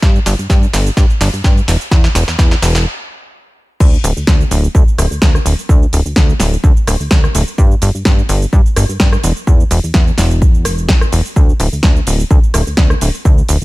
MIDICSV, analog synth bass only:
0, 0, Header, 1, 2, 480
1, 0, Start_track
1, 0, Tempo, 472441
1, 23, Time_signature, 4, 2, 24, 8
1, 13863, End_track
2, 0, Start_track
2, 0, Title_t, "Analog synth bass"
2, 0, Program_c, 0, 38
2, 25, Note_on_c, 0, 43, 94
2, 194, Note_off_c, 0, 43, 0
2, 268, Note_on_c, 0, 31, 97
2, 353, Note_off_c, 0, 31, 0
2, 395, Note_on_c, 0, 43, 41
2, 483, Note_off_c, 0, 43, 0
2, 506, Note_on_c, 0, 43, 96
2, 674, Note_off_c, 0, 43, 0
2, 747, Note_on_c, 0, 31, 102
2, 915, Note_off_c, 0, 31, 0
2, 985, Note_on_c, 0, 43, 95
2, 1072, Note_off_c, 0, 43, 0
2, 1227, Note_on_c, 0, 31, 98
2, 1313, Note_off_c, 0, 31, 0
2, 1355, Note_on_c, 0, 43, 43
2, 1443, Note_off_c, 0, 43, 0
2, 1465, Note_on_c, 0, 43, 87
2, 1634, Note_off_c, 0, 43, 0
2, 1707, Note_on_c, 0, 28, 79
2, 1793, Note_off_c, 0, 28, 0
2, 1945, Note_on_c, 0, 40, 101
2, 2113, Note_off_c, 0, 40, 0
2, 2183, Note_on_c, 0, 28, 100
2, 2271, Note_off_c, 0, 28, 0
2, 2313, Note_on_c, 0, 40, 43
2, 2402, Note_off_c, 0, 40, 0
2, 2424, Note_on_c, 0, 40, 98
2, 2593, Note_off_c, 0, 40, 0
2, 2665, Note_on_c, 0, 28, 101
2, 2904, Note_off_c, 0, 28, 0
2, 3865, Note_on_c, 0, 38, 93
2, 4033, Note_off_c, 0, 38, 0
2, 4104, Note_on_c, 0, 26, 99
2, 4192, Note_off_c, 0, 26, 0
2, 4232, Note_on_c, 0, 38, 43
2, 4322, Note_off_c, 0, 38, 0
2, 4344, Note_on_c, 0, 38, 101
2, 4513, Note_off_c, 0, 38, 0
2, 4584, Note_on_c, 0, 26, 99
2, 4753, Note_off_c, 0, 26, 0
2, 4824, Note_on_c, 0, 38, 99
2, 4911, Note_off_c, 0, 38, 0
2, 5063, Note_on_c, 0, 26, 95
2, 5151, Note_off_c, 0, 26, 0
2, 5190, Note_on_c, 0, 38, 43
2, 5281, Note_off_c, 0, 38, 0
2, 5303, Note_on_c, 0, 38, 85
2, 5473, Note_off_c, 0, 38, 0
2, 5542, Note_on_c, 0, 26, 80
2, 5631, Note_off_c, 0, 26, 0
2, 5784, Note_on_c, 0, 38, 97
2, 5953, Note_off_c, 0, 38, 0
2, 6024, Note_on_c, 0, 26, 94
2, 6111, Note_off_c, 0, 26, 0
2, 6152, Note_on_c, 0, 38, 44
2, 6242, Note_off_c, 0, 38, 0
2, 6265, Note_on_c, 0, 38, 98
2, 6433, Note_off_c, 0, 38, 0
2, 6503, Note_on_c, 0, 26, 100
2, 6672, Note_off_c, 0, 26, 0
2, 6744, Note_on_c, 0, 38, 98
2, 6831, Note_off_c, 0, 38, 0
2, 6984, Note_on_c, 0, 26, 102
2, 7071, Note_off_c, 0, 26, 0
2, 7113, Note_on_c, 0, 38, 42
2, 7202, Note_off_c, 0, 38, 0
2, 7223, Note_on_c, 0, 38, 88
2, 7393, Note_off_c, 0, 38, 0
2, 7465, Note_on_c, 0, 26, 88
2, 7552, Note_off_c, 0, 26, 0
2, 7704, Note_on_c, 0, 43, 97
2, 7873, Note_off_c, 0, 43, 0
2, 7943, Note_on_c, 0, 31, 102
2, 8031, Note_off_c, 0, 31, 0
2, 8073, Note_on_c, 0, 43, 41
2, 8162, Note_off_c, 0, 43, 0
2, 8183, Note_on_c, 0, 43, 99
2, 8353, Note_off_c, 0, 43, 0
2, 8424, Note_on_c, 0, 31, 98
2, 8593, Note_off_c, 0, 31, 0
2, 8664, Note_on_c, 0, 43, 101
2, 8751, Note_off_c, 0, 43, 0
2, 8905, Note_on_c, 0, 31, 100
2, 8992, Note_off_c, 0, 31, 0
2, 9032, Note_on_c, 0, 43, 44
2, 9122, Note_off_c, 0, 43, 0
2, 9143, Note_on_c, 0, 43, 84
2, 9313, Note_off_c, 0, 43, 0
2, 9385, Note_on_c, 0, 28, 81
2, 9472, Note_off_c, 0, 28, 0
2, 9624, Note_on_c, 0, 40, 95
2, 9793, Note_off_c, 0, 40, 0
2, 9864, Note_on_c, 0, 28, 101
2, 9951, Note_off_c, 0, 28, 0
2, 9993, Note_on_c, 0, 40, 45
2, 10082, Note_off_c, 0, 40, 0
2, 10104, Note_on_c, 0, 40, 99
2, 10273, Note_off_c, 0, 40, 0
2, 10344, Note_on_c, 0, 28, 106
2, 10584, Note_on_c, 0, 40, 91
2, 10599, Note_off_c, 0, 28, 0
2, 10825, Note_on_c, 0, 28, 99
2, 10841, Note_off_c, 0, 40, 0
2, 11065, Note_on_c, 0, 40, 90
2, 11080, Note_off_c, 0, 28, 0
2, 11234, Note_off_c, 0, 40, 0
2, 11304, Note_on_c, 0, 28, 91
2, 11391, Note_off_c, 0, 28, 0
2, 11544, Note_on_c, 0, 38, 97
2, 11713, Note_off_c, 0, 38, 0
2, 11783, Note_on_c, 0, 26, 99
2, 11871, Note_off_c, 0, 26, 0
2, 11912, Note_on_c, 0, 38, 43
2, 12002, Note_off_c, 0, 38, 0
2, 12025, Note_on_c, 0, 38, 99
2, 12194, Note_off_c, 0, 38, 0
2, 12265, Note_on_c, 0, 26, 97
2, 12434, Note_off_c, 0, 26, 0
2, 12504, Note_on_c, 0, 38, 96
2, 12591, Note_off_c, 0, 38, 0
2, 12743, Note_on_c, 0, 26, 100
2, 12831, Note_off_c, 0, 26, 0
2, 12873, Note_on_c, 0, 38, 44
2, 12962, Note_off_c, 0, 38, 0
2, 12985, Note_on_c, 0, 38, 88
2, 13153, Note_off_c, 0, 38, 0
2, 13224, Note_on_c, 0, 26, 80
2, 13312, Note_off_c, 0, 26, 0
2, 13465, Note_on_c, 0, 38, 99
2, 13633, Note_off_c, 0, 38, 0
2, 13705, Note_on_c, 0, 26, 97
2, 13792, Note_off_c, 0, 26, 0
2, 13831, Note_on_c, 0, 38, 43
2, 13863, Note_off_c, 0, 38, 0
2, 13863, End_track
0, 0, End_of_file